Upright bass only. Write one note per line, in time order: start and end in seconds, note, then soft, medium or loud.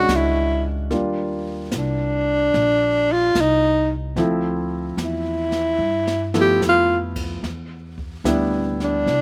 0.09 0.88 C#2 medium
0.91 1.70 D#2 medium
1.73 2.51 C2 medium
2.54 3.33 A#1 medium
3.35 4.14 C2 medium
4.16 4.95 D2 medium
4.97 5.77 E2 medium
5.78 6.59 G2 medium
6.61 7.41 F2 medium
7.43 8.22 E2 medium
8.24 9.04 D2 medium
9.06 9.21 C2 medium